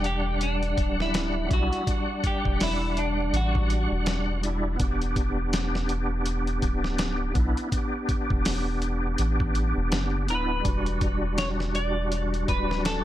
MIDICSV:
0, 0, Header, 1, 5, 480
1, 0, Start_track
1, 0, Key_signature, 1, "minor"
1, 0, Tempo, 731707
1, 1229, Time_signature, 4, 2, 24, 8
1, 8554, End_track
2, 0, Start_track
2, 0, Title_t, "Clean electric guitar"
2, 0, Program_c, 0, 27
2, 36, Note_on_c, 0, 67, 91
2, 280, Note_off_c, 0, 67, 0
2, 281, Note_on_c, 0, 62, 75
2, 631, Note_off_c, 0, 62, 0
2, 667, Note_on_c, 0, 64, 89
2, 1006, Note_on_c, 0, 66, 90
2, 1007, Note_off_c, 0, 64, 0
2, 1451, Note_off_c, 0, 66, 0
2, 1487, Note_on_c, 0, 67, 83
2, 1722, Note_off_c, 0, 67, 0
2, 1724, Note_on_c, 0, 64, 84
2, 1958, Note_on_c, 0, 62, 79
2, 1963, Note_off_c, 0, 64, 0
2, 2200, Note_off_c, 0, 62, 0
2, 2207, Note_on_c, 0, 66, 75
2, 2892, Note_off_c, 0, 66, 0
2, 6758, Note_on_c, 0, 71, 98
2, 7465, Note_off_c, 0, 71, 0
2, 7467, Note_on_c, 0, 73, 95
2, 7532, Note_off_c, 0, 73, 0
2, 7710, Note_on_c, 0, 74, 105
2, 8190, Note_off_c, 0, 74, 0
2, 8192, Note_on_c, 0, 71, 93
2, 8432, Note_off_c, 0, 71, 0
2, 8434, Note_on_c, 0, 69, 101
2, 8554, Note_off_c, 0, 69, 0
2, 8554, End_track
3, 0, Start_track
3, 0, Title_t, "Tonewheel organ"
3, 0, Program_c, 1, 16
3, 0, Note_on_c, 1, 55, 72
3, 0, Note_on_c, 1, 62, 64
3, 0, Note_on_c, 1, 78, 77
3, 954, Note_off_c, 1, 55, 0
3, 966, Note_off_c, 1, 62, 0
3, 972, Note_on_c, 1, 55, 71
3, 979, Note_off_c, 1, 78, 0
3, 986, Note_on_c, 1, 62, 69
3, 996, Note_on_c, 1, 64, 84
3, 1194, Note_off_c, 1, 55, 0
3, 1201, Note_on_c, 1, 55, 71
3, 1204, Note_off_c, 1, 62, 0
3, 1209, Note_off_c, 1, 64, 0
3, 1225, Note_on_c, 1, 62, 60
3, 1249, Note_on_c, 1, 78, 80
3, 2872, Note_off_c, 1, 55, 0
3, 2883, Note_off_c, 1, 62, 0
3, 2894, Note_on_c, 1, 55, 79
3, 2896, Note_off_c, 1, 78, 0
3, 2907, Note_on_c, 1, 62, 66
3, 2920, Note_on_c, 1, 64, 79
3, 3118, Note_off_c, 1, 55, 0
3, 3124, Note_off_c, 1, 62, 0
3, 3124, Note_on_c, 1, 59, 70
3, 3131, Note_off_c, 1, 64, 0
3, 3147, Note_on_c, 1, 62, 65
3, 3171, Note_on_c, 1, 67, 74
3, 4793, Note_off_c, 1, 59, 0
3, 4804, Note_off_c, 1, 62, 0
3, 4815, Note_on_c, 1, 59, 79
3, 4817, Note_off_c, 1, 67, 0
3, 4826, Note_on_c, 1, 62, 70
3, 4840, Note_on_c, 1, 64, 83
3, 5036, Note_off_c, 1, 59, 0
3, 5044, Note_off_c, 1, 62, 0
3, 5044, Note_on_c, 1, 59, 70
3, 5051, Note_off_c, 1, 64, 0
3, 5071, Note_on_c, 1, 62, 71
3, 5095, Note_on_c, 1, 67, 74
3, 6713, Note_off_c, 1, 59, 0
3, 6726, Note_off_c, 1, 62, 0
3, 6734, Note_on_c, 1, 59, 68
3, 6738, Note_off_c, 1, 67, 0
3, 6748, Note_on_c, 1, 62, 69
3, 6760, Note_on_c, 1, 64, 81
3, 6958, Note_off_c, 1, 59, 0
3, 6961, Note_on_c, 1, 55, 67
3, 6965, Note_off_c, 1, 62, 0
3, 6971, Note_off_c, 1, 64, 0
3, 6986, Note_on_c, 1, 62, 66
3, 7010, Note_on_c, 1, 66, 80
3, 8554, Note_off_c, 1, 55, 0
3, 8554, Note_off_c, 1, 62, 0
3, 8554, Note_off_c, 1, 66, 0
3, 8554, End_track
4, 0, Start_track
4, 0, Title_t, "Sub bass"
4, 0, Program_c, 2, 38
4, 0, Note_on_c, 2, 28, 93
4, 489, Note_off_c, 2, 28, 0
4, 508, Note_on_c, 2, 26, 80
4, 970, Note_off_c, 2, 26, 0
4, 989, Note_on_c, 2, 35, 75
4, 1114, Note_off_c, 2, 35, 0
4, 1611, Note_on_c, 2, 28, 87
4, 2170, Note_off_c, 2, 28, 0
4, 2183, Note_on_c, 2, 33, 93
4, 2541, Note_off_c, 2, 33, 0
4, 2567, Note_on_c, 2, 28, 91
4, 3128, Note_off_c, 2, 28, 0
4, 3149, Note_on_c, 2, 28, 91
4, 4330, Note_off_c, 2, 28, 0
4, 4347, Note_on_c, 2, 26, 81
4, 4809, Note_off_c, 2, 26, 0
4, 4823, Note_on_c, 2, 35, 77
4, 4951, Note_off_c, 2, 35, 0
4, 5447, Note_on_c, 2, 28, 85
4, 6008, Note_off_c, 2, 28, 0
4, 6026, Note_on_c, 2, 33, 86
4, 6382, Note_off_c, 2, 33, 0
4, 6408, Note_on_c, 2, 28, 100
4, 6506, Note_on_c, 2, 30, 91
4, 6515, Note_off_c, 2, 28, 0
4, 6745, Note_on_c, 2, 26, 88
4, 6755, Note_off_c, 2, 30, 0
4, 6964, Note_off_c, 2, 26, 0
4, 6987, Note_on_c, 2, 28, 89
4, 8169, Note_off_c, 2, 28, 0
4, 8189, Note_on_c, 2, 26, 75
4, 8554, Note_off_c, 2, 26, 0
4, 8554, End_track
5, 0, Start_track
5, 0, Title_t, "Drums"
5, 27, Note_on_c, 9, 42, 62
5, 93, Note_off_c, 9, 42, 0
5, 268, Note_on_c, 9, 42, 80
5, 334, Note_off_c, 9, 42, 0
5, 411, Note_on_c, 9, 42, 38
5, 476, Note_off_c, 9, 42, 0
5, 508, Note_on_c, 9, 36, 81
5, 509, Note_on_c, 9, 42, 63
5, 574, Note_off_c, 9, 36, 0
5, 575, Note_off_c, 9, 42, 0
5, 658, Note_on_c, 9, 38, 45
5, 724, Note_off_c, 9, 38, 0
5, 749, Note_on_c, 9, 42, 86
5, 753, Note_on_c, 9, 38, 111
5, 814, Note_off_c, 9, 42, 0
5, 818, Note_off_c, 9, 38, 0
5, 988, Note_on_c, 9, 36, 88
5, 989, Note_on_c, 9, 42, 63
5, 1054, Note_off_c, 9, 36, 0
5, 1054, Note_off_c, 9, 42, 0
5, 1132, Note_on_c, 9, 42, 43
5, 1198, Note_off_c, 9, 42, 0
5, 1228, Note_on_c, 9, 36, 105
5, 1229, Note_on_c, 9, 42, 80
5, 1293, Note_off_c, 9, 36, 0
5, 1295, Note_off_c, 9, 42, 0
5, 1467, Note_on_c, 9, 42, 66
5, 1468, Note_on_c, 9, 36, 82
5, 1533, Note_off_c, 9, 36, 0
5, 1533, Note_off_c, 9, 42, 0
5, 1610, Note_on_c, 9, 36, 91
5, 1675, Note_off_c, 9, 36, 0
5, 1708, Note_on_c, 9, 46, 77
5, 1712, Note_on_c, 9, 38, 115
5, 1774, Note_off_c, 9, 46, 0
5, 1778, Note_off_c, 9, 38, 0
5, 1948, Note_on_c, 9, 42, 63
5, 2013, Note_off_c, 9, 42, 0
5, 2189, Note_on_c, 9, 42, 82
5, 2255, Note_off_c, 9, 42, 0
5, 2330, Note_on_c, 9, 36, 87
5, 2395, Note_off_c, 9, 36, 0
5, 2428, Note_on_c, 9, 42, 62
5, 2493, Note_off_c, 9, 42, 0
5, 2665, Note_on_c, 9, 42, 83
5, 2669, Note_on_c, 9, 38, 108
5, 2730, Note_off_c, 9, 42, 0
5, 2734, Note_off_c, 9, 38, 0
5, 2909, Note_on_c, 9, 42, 67
5, 2974, Note_off_c, 9, 42, 0
5, 3146, Note_on_c, 9, 42, 87
5, 3147, Note_on_c, 9, 36, 106
5, 3212, Note_off_c, 9, 36, 0
5, 3212, Note_off_c, 9, 42, 0
5, 3290, Note_on_c, 9, 42, 45
5, 3355, Note_off_c, 9, 42, 0
5, 3386, Note_on_c, 9, 36, 88
5, 3386, Note_on_c, 9, 42, 64
5, 3452, Note_off_c, 9, 36, 0
5, 3452, Note_off_c, 9, 42, 0
5, 3627, Note_on_c, 9, 42, 89
5, 3631, Note_on_c, 9, 38, 111
5, 3693, Note_off_c, 9, 42, 0
5, 3697, Note_off_c, 9, 38, 0
5, 3773, Note_on_c, 9, 38, 52
5, 3839, Note_off_c, 9, 38, 0
5, 3864, Note_on_c, 9, 42, 64
5, 3930, Note_off_c, 9, 42, 0
5, 4104, Note_on_c, 9, 42, 78
5, 4169, Note_off_c, 9, 42, 0
5, 4246, Note_on_c, 9, 42, 41
5, 4312, Note_off_c, 9, 42, 0
5, 4345, Note_on_c, 9, 36, 85
5, 4345, Note_on_c, 9, 42, 63
5, 4410, Note_off_c, 9, 42, 0
5, 4411, Note_off_c, 9, 36, 0
5, 4489, Note_on_c, 9, 38, 43
5, 4555, Note_off_c, 9, 38, 0
5, 4582, Note_on_c, 9, 42, 85
5, 4586, Note_on_c, 9, 38, 111
5, 4648, Note_off_c, 9, 42, 0
5, 4652, Note_off_c, 9, 38, 0
5, 4822, Note_on_c, 9, 42, 59
5, 4824, Note_on_c, 9, 36, 91
5, 4888, Note_off_c, 9, 42, 0
5, 4890, Note_off_c, 9, 36, 0
5, 4968, Note_on_c, 9, 42, 42
5, 5033, Note_off_c, 9, 42, 0
5, 5065, Note_on_c, 9, 36, 97
5, 5066, Note_on_c, 9, 42, 84
5, 5131, Note_off_c, 9, 36, 0
5, 5131, Note_off_c, 9, 42, 0
5, 5305, Note_on_c, 9, 36, 90
5, 5305, Note_on_c, 9, 42, 66
5, 5371, Note_off_c, 9, 36, 0
5, 5371, Note_off_c, 9, 42, 0
5, 5447, Note_on_c, 9, 36, 93
5, 5513, Note_off_c, 9, 36, 0
5, 5546, Note_on_c, 9, 46, 82
5, 5550, Note_on_c, 9, 38, 117
5, 5611, Note_off_c, 9, 46, 0
5, 5615, Note_off_c, 9, 38, 0
5, 5785, Note_on_c, 9, 42, 62
5, 5850, Note_off_c, 9, 42, 0
5, 6024, Note_on_c, 9, 42, 82
5, 6089, Note_off_c, 9, 42, 0
5, 6167, Note_on_c, 9, 36, 85
5, 6233, Note_off_c, 9, 36, 0
5, 6265, Note_on_c, 9, 42, 59
5, 6331, Note_off_c, 9, 42, 0
5, 6506, Note_on_c, 9, 42, 80
5, 6510, Note_on_c, 9, 38, 117
5, 6572, Note_off_c, 9, 42, 0
5, 6575, Note_off_c, 9, 38, 0
5, 6746, Note_on_c, 9, 42, 65
5, 6812, Note_off_c, 9, 42, 0
5, 6986, Note_on_c, 9, 36, 101
5, 6986, Note_on_c, 9, 42, 80
5, 7051, Note_off_c, 9, 36, 0
5, 7052, Note_off_c, 9, 42, 0
5, 7126, Note_on_c, 9, 42, 42
5, 7192, Note_off_c, 9, 42, 0
5, 7224, Note_on_c, 9, 42, 59
5, 7225, Note_on_c, 9, 36, 82
5, 7289, Note_off_c, 9, 42, 0
5, 7291, Note_off_c, 9, 36, 0
5, 7464, Note_on_c, 9, 42, 87
5, 7468, Note_on_c, 9, 38, 113
5, 7530, Note_off_c, 9, 42, 0
5, 7533, Note_off_c, 9, 38, 0
5, 7611, Note_on_c, 9, 38, 50
5, 7677, Note_off_c, 9, 38, 0
5, 7707, Note_on_c, 9, 42, 66
5, 7773, Note_off_c, 9, 42, 0
5, 7949, Note_on_c, 9, 42, 76
5, 8014, Note_off_c, 9, 42, 0
5, 8094, Note_on_c, 9, 42, 43
5, 8159, Note_off_c, 9, 42, 0
5, 8189, Note_on_c, 9, 36, 79
5, 8189, Note_on_c, 9, 42, 64
5, 8254, Note_off_c, 9, 36, 0
5, 8255, Note_off_c, 9, 42, 0
5, 8339, Note_on_c, 9, 38, 43
5, 8404, Note_off_c, 9, 38, 0
5, 8431, Note_on_c, 9, 42, 89
5, 8435, Note_on_c, 9, 38, 119
5, 8496, Note_off_c, 9, 42, 0
5, 8500, Note_off_c, 9, 38, 0
5, 8554, End_track
0, 0, End_of_file